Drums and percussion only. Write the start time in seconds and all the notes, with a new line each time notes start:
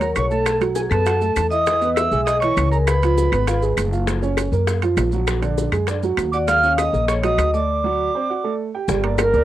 0.01 high bongo, high timbale, maracas
0.15 high bongo, low bongo, high timbale, claves, maracas
0.31 maracas
0.46 high bongo, high timbale, claves, maracas
0.61 high bongo, high timbale, maracas
0.75 high bongo, maracas
0.91 high bongo, high timbale, claves, maracas
1.06 high bongo, high timbale, maracas
1.21 high bongo, maracas
1.36 high bongo, low bongo, high timbale, claves, maracas
1.51 maracas
1.66 high bongo, high timbale, maracas
1.81 high bongo, maracas
1.96 high bongo, high timbale, claves, maracas
2.12 high bongo, maracas
2.27 high bongo, high timbale, maracas
2.42 high bongo, high timbale, maracas
2.57 high bongo, low bongo, high timbale, claves, maracas
2.72 maracas
2.87 high bongo, high timbale, claves, maracas
3.02 high bongo, high timbale, maracas
3.18 high bongo, maracas
3.32 high bongo, high timbale, claves, maracas
3.47 high bongo, high timbale, maracas
3.62 high bongo, maracas
3.77 high bongo, low bongo, high timbale, claves, maracas
3.93 maracas
4.07 high bongo, high timbale, maracas
4.22 high bongo, maracas
4.37 high bongo, high timbale, claves, maracas
4.53 high bongo, maracas
4.68 high bongo, high timbale, maracas
4.82 high bongo, high timbale, maracas
4.97 high bongo, low bongo, high timbale, low timbale, claves, maracas
5.12 maracas
5.27 high bongo, high timbale, claves, maracas
5.43 high bongo, high timbale, maracas
5.58 high bongo, maracas
5.72 high bongo, high timbale, claves, maracas
5.87 high bongo, high timbale, maracas
6.03 high bongo, maracas
6.17 high bongo, low bongo, high timbale, claves, maracas
6.33 maracas
6.48 high bongo, high timbale, maracas
6.63 high bongo, maracas
6.78 high bongo, high timbale, claves, maracas
6.94 high bongo, maracas
7.08 high bongo, high timbale, maracas
7.23 high bongo, high timbale, maracas
7.38 high bongo, low bongo, high timbale, claves, maracas
7.54 maracas
8.88 high bongo, maracas
9.04 high bongo, high timbale
9.18 high bongo, high timbale, low timbale, claves, maracas
9.33 high bongo, maracas